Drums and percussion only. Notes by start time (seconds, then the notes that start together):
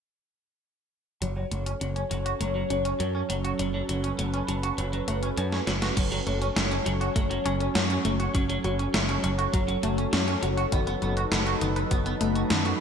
1.22 closed hi-hat
1.52 closed hi-hat
1.66 closed hi-hat
1.81 closed hi-hat
1.96 closed hi-hat
2.11 closed hi-hat
2.26 closed hi-hat
2.41 closed hi-hat
2.70 closed hi-hat
2.85 closed hi-hat
3.00 closed hi-hat
3.30 closed hi-hat
3.45 closed hi-hat
3.59 closed hi-hat
3.89 closed hi-hat
4.04 closed hi-hat
4.19 closed hi-hat
4.34 closed hi-hat
4.49 closed hi-hat
4.63 closed hi-hat
4.78 closed hi-hat
4.93 closed hi-hat
5.08 closed hi-hat
5.23 closed hi-hat
5.37 closed hi-hat
5.52 snare
5.67 snare, closed hi-hat
5.82 snare, closed hi-hat
5.97 kick, closed hi-hat, crash
6.12 closed hi-hat
6.27 closed hi-hat
6.42 closed hi-hat
6.56 snare, closed hi-hat
6.71 closed hi-hat
6.86 closed hi-hat
7.01 closed hi-hat
7.16 kick, closed hi-hat
7.31 closed hi-hat
7.46 closed hi-hat
7.60 closed hi-hat
7.75 snare, closed hi-hat
7.90 closed hi-hat
8.05 closed hi-hat
8.20 closed hi-hat
8.35 kick, closed hi-hat
8.50 closed hi-hat
8.64 closed hi-hat
8.79 closed hi-hat
8.94 snare, closed hi-hat
9.09 closed hi-hat
9.24 closed hi-hat
9.39 closed hi-hat
9.54 kick, closed hi-hat
9.68 closed hi-hat
9.83 closed hi-hat
9.98 closed hi-hat
10.13 snare, closed hi-hat
10.28 closed hi-hat
10.43 closed hi-hat
10.57 closed hi-hat
10.72 kick, closed hi-hat
10.87 closed hi-hat
11.02 closed hi-hat
11.17 closed hi-hat
11.32 snare, closed hi-hat
11.47 closed hi-hat
11.61 closed hi-hat
11.76 closed hi-hat
11.91 kick, closed hi-hat
12.06 closed hi-hat
12.21 closed hi-hat
12.35 closed hi-hat
12.50 snare, closed hi-hat
12.65 closed hi-hat